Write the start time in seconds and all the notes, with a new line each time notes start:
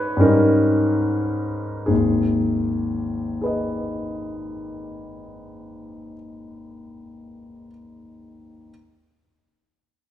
Already playing: G#2 G3 C#4 D#4 B4 C#5
0.17 G#2 G3 C#4
0.21 D#4 A#4
1.86 G#1 D#2 G#4
3.41 G#4 B4
3.46 D#5